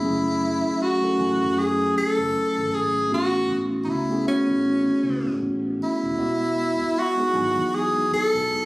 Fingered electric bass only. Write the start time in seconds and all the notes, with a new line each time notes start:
0.04 F#1
0.65 muted fingered electric bass stroke
1.19 A1
1.41 F#2
1.96 muted fingered electric bass stroke
2.18 F#1
2.58 G#1
2.73 G#1
3.12 A1
3.50 A1
3.88 C#2
4.49 A1
5.04 C#2
5.26 A2
5.41 A1
6.03 D#1
6.19 E1
6.82 muted fingered electric bass stroke
7.35 G#1
7.57 E2
8.12 muted fingered electric bass stroke
8.35 E1